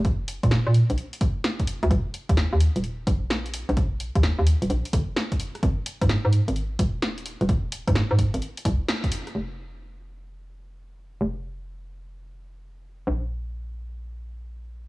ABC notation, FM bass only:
X:1
M:4/4
L:1/16
Q:"Swing 16ths" 1/4=129
K:Ab
V:1 name="FM bass" clef=bass
F,,,3 B,,2 B,,2 B,,, z6 z =D,, | E,,, z2 E,,2 E,,2 E,,,3 B,,,4- B,,, B,,,- | B,,,3 E,,2 E,,2 E,,, B,,, z G,,, z4 z | A,,, z2 A,,2 A,,2 A,,,3 E,,,4- E,,, E,,,- |
E,,,3 A,,2 A,,2 A,,, z2 C,, z4 z | F,,,16 | F,,,16 | B,,,16 |]